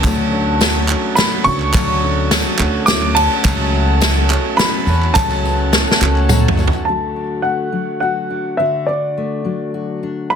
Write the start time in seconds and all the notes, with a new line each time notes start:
Already playing: D3 A5
0.04 D2 D3 F#3 A3 C#4 D4 F#4 A4 C#5 F#5, kick, clap, ride, tambourine
0.32 F#3 C#4 D4 A4 C#5
0.60 F#3 A3 C#4 D4 F#4 A4 C#5, snare, ride, tambourine
0.89 F#3 C#4 D4 A4 C#5, clap
1.15 F#3 A3 C#4 D4 C#5 B5, snare, ride, tambourine
1.20 F#4
1.44 C#2 F#3 C#4 D4 F#4 A4 C#5 C#6, tambourine
1.49 A3
1.60 clap
1.74 D2 D3 F#3 A3 C#4 D4 F#4 A4 C#5, kick, clap, ride, tambourine
2.03 F#3 C#4 D4 A4 C#5
2.31 F#3 A3 C#4 D4 F#4 A4 C#5, snare, ride, tambourine
2.59 D2 F#3 C#4 D4 F#4 A4 C#5, clap
2.63 A3
2.86 F#3 A3 C#4 D4 A4 E5 D6, snare, ride, tambourine
2.91 C#4 F#4
3.15 F#3 A3 C#4 D4 F#4 A4 C#5 A5, ride, tambourine
3.31 clap
3.44 C#2 C#3 F#3 A3 C#4 F#4 A4 C#5 A5, kick, clap, ride, tambourine
3.74 F#3 A3 C#4 A4 E5
4.01 F#3 A3 C#4 F#4 A4 E5, snare, ride, tambourine
4.29 F#3 A3 C#4 F#4 A4 C#5, clap
4.57 F#3 A3 C#4 F#4 C#5 B5, snare, ride, tambourine
4.86 E2 F#3 A3 C#4 F#4 A4 C#5, tambourine
5.03 clap
5.14 C#2 C#3 F#3 A3 C#4 F#4 A4 A5, kick, clap, ride, tambourine
5.30 clap, tambourine
5.44 F#3 A3 C#4 A4 B4, tambourine
5.72 F#3 A3 C#4 F#4 A4 C#5, snare, clap, tambourine
5.87 tambourine
5.91 snare
6.00 C#2 F#3 A3 C#4 F#4 A4 C#5, clap
6.16 clap
6.29 F#3 A3 C#4 F#4 A4 C#5, mid tom, tambourine
6.48 mid tom
6.58 F#3 A3 C#4 F#4 A4 C#5, clap, tambourine
6.68 floor tom
6.73 clap, tambourine
6.85 D3 F#3 A3 D4 A5
6.89 F#4
7.16 D4
7.42 A3 F#5
7.72 F#3 D4
8.00 F#4 F#5
8.30 D4
8.57 D3 F#4 E5
8.86 D4 D5
9.17 A3
9.44 F#3 D4
9.74 F#4
10.03 D4
10.30 A2 A4 B5